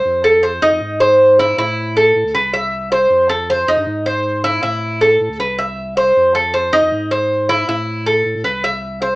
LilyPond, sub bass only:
\new Staff \with { instrumentName = "Sub bass" } { \clef bass \time 4/4 \key a \minor \tempo 4 = 157 f,4. f,16 f,16 gis,2 | a,4. a,16 d,16 c,2 | f,4. f,16 g,16 gis,2 | a,4. a,16 d,16 c,2 |
f,4. f,16 f,16 gis,2 | a,4. a,16 a,16 c,2 | }